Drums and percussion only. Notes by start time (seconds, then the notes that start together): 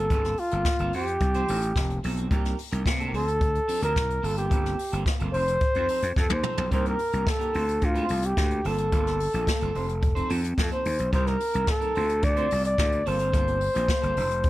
0.10 kick, closed hi-hat
0.24 snare, closed hi-hat
0.37 open hi-hat
0.51 closed hi-hat
0.65 kick, snare, closed hi-hat
0.79 closed hi-hat
0.93 open hi-hat
1.07 closed hi-hat
1.20 kick, closed hi-hat
1.34 closed hi-hat
1.48 open hi-hat
1.62 closed hi-hat
1.76 kick, snare, closed hi-hat
1.90 closed hi-hat
2.04 open hi-hat
2.17 closed hi-hat
2.31 kick, closed hi-hat
2.45 snare, closed hi-hat
2.58 open hi-hat
2.72 closed hi-hat
2.86 kick, snare, closed hi-hat
3.00 closed hi-hat
3.14 open hi-hat
3.28 closed hi-hat
3.41 kick, closed hi-hat
3.55 closed hi-hat
3.69 open hi-hat
3.82 closed hi-hat
3.96 kick, snare, closed hi-hat
4.10 closed hi-hat
4.24 open hi-hat
4.37 closed hi-hat
4.51 kick, closed hi-hat
4.66 snare, closed hi-hat
4.79 open hi-hat
4.93 closed hi-hat
5.06 kick, snare, closed hi-hat
5.20 closed hi-hat
5.34 open hi-hat
5.48 closed hi-hat
5.60 kick, closed hi-hat
5.75 closed hi-hat
5.88 open hi-hat
6.02 closed hi-hat
6.16 kick, snare
6.30 high tom
6.43 mid tom
6.58 floor tom
6.71 kick, closed hi-hat
6.86 closed hi-hat
6.99 open hi-hat
7.13 closed hi-hat
7.27 kick, snare, closed hi-hat
7.41 closed hi-hat
7.54 open hi-hat
7.68 closed hi-hat
7.81 kick, closed hi-hat
7.95 closed hi-hat
8.09 open hi-hat
8.23 closed hi-hat
8.37 kick, snare, closed hi-hat
8.51 closed hi-hat
8.65 open hi-hat
8.78 closed hi-hat
8.92 kick, closed hi-hat
9.07 snare, closed hi-hat
9.20 open hi-hat
9.34 closed hi-hat
9.47 kick, snare, closed hi-hat
9.61 closed hi-hat
9.75 open hi-hat
9.89 closed hi-hat
10.02 kick, closed hi-hat
10.16 closed hi-hat
10.30 open hi-hat
10.44 closed hi-hat
10.58 kick, snare, closed hi-hat
10.72 closed hi-hat
10.85 open hi-hat
10.99 closed hi-hat
11.13 kick, closed hi-hat
11.27 snare, closed hi-hat
11.40 open hi-hat
11.54 closed hi-hat
11.67 kick, snare, closed hi-hat
11.81 closed hi-hat
11.95 open hi-hat
12.09 closed hi-hat
12.22 kick, closed hi-hat
12.36 closed hi-hat
12.51 open hi-hat
12.64 closed hi-hat
12.78 kick, snare, closed hi-hat
12.92 closed hi-hat
13.06 open hi-hat
13.19 closed hi-hat
13.33 kick, closed hi-hat
13.47 closed hi-hat
13.61 open hi-hat
13.75 closed hi-hat
13.88 kick, snare, closed hi-hat
14.03 closed hi-hat
14.17 open hi-hat
14.31 closed hi-hat
14.43 kick, closed hi-hat